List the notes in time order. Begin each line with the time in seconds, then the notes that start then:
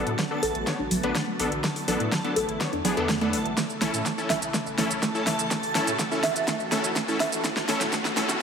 Already playing: D3 F#3 A3 B3 D4 F#4 A4 A5
0.07 A2, closed hi-hat
0.19 F#3, kick, snare, closed hi-hat
0.31 B3 D4 A4
0.43 A1 A4, open hi-hat
0.55 A1, closed hi-hat
0.67 B3 D4 C#5, kick, snare, closed hi-hat
0.79 A1 D4
0.91 A1 F#3, open hi-hat
1.03 A1 B3 D4 A4 B4, closed hi-hat
1.15 A3, kick, snare, closed hi-hat
1.27 A3
1.39 A1 B3 D4 A4, open hi-hat
1.52 A1, closed hi-hat
1.64 F#3 E4, kick, snare, closed hi-hat
1.76 open hi-hat
1.88 A1 F#3 B3 D4 A4, open hi-hat
2.00 A2, closed hi-hat
2.12 F#3, kick, snare, closed hi-hat
2.24 B3 D4 A4, closed hi-hat
2.36 A1 A4, open hi-hat
2.49 A1, closed hi-hat
2.60 B3 D4 C#5, kick, snare, closed hi-hat
2.73 E2 D4, closed hi-hat
2.85 A1 F#3 B3 D4 G#4, open hi-hat
2.97 E2 B3 D4 A4, closed hi-hat
3.09 A3, kick, snare, closed hi-hat
3.21 A3 B3 D4 A4, closed hi-hat
3.33 A1, open hi-hat
3.45 A1, closed hi-hat
3.57 C#3 E3 A3 E4 A4, kick, snare, closed hi-hat, riser, shaker
3.70 shaker
3.81 A1 A3 C#4 E4 A4, snare, open hi-hat
3.94 A2, closed hi-hat, shaker
4.06 A3, kick, snare, closed hi-hat, shaker
4.18 C#4 E4 A4, shaker
4.30 A1 E5, snare, open hi-hat
4.42 A1, closed hi-hat, shaker
4.54 A3, kick, snare, closed hi-hat, shaker
4.66 A1, shaker
4.78 A1 A3 C#4 E4 A4, snare, open hi-hat
4.91 A1, closed hi-hat, shaker
5.02 A3, kick, snare, closed hi-hat, shaker
5.15 C#4 E4 A4, shaker
5.27 A1 E5, snare, open hi-hat
5.39 A1, closed hi-hat, shaker
5.51 A3 F#4, kick, snare, closed hi-hat, shaker
5.63 open hi-hat, shaker
5.75 A1 A3 C#4 E4 A4, snare, open hi-hat
5.87 A2, closed hi-hat, shaker
5.99 A3, kick, snare, closed hi-hat, shaker
6.11 C#4 E4 A4, shaker
6.23 A1 E5, snare, open hi-hat
6.36 A1, closed hi-hat, shaker
6.48 A3, kick, snare, closed hi-hat, shaker
6.60 A1, shaker
6.72 A1 A3 C#4 E4 A4, snare, open hi-hat
6.84 A1, closed hi-hat, shaker
6.96 A3, kick, snare, closed hi-hat, shaker
7.08 C#4 E4 A4, shaker
7.20 A1 E5, snare, open hi-hat
7.32 A1, closed hi-hat, shaker
7.44 D3 F#3 A3 B3 F#4, kick, snare, closed hi-hat, shaker
7.57 snare, shaker
7.68 A1 A3 C#4 E4 A4, snare, open hi-hat
7.81 A2, snare, closed hi-hat, shaker
7.93 A3, kick, snare, closed hi-hat, shaker
8.05 snare, shaker
8.17 A1 A3 C#4 E4 A4, snare, open hi-hat
8.29 A1, snare, closed hi-hat, shaker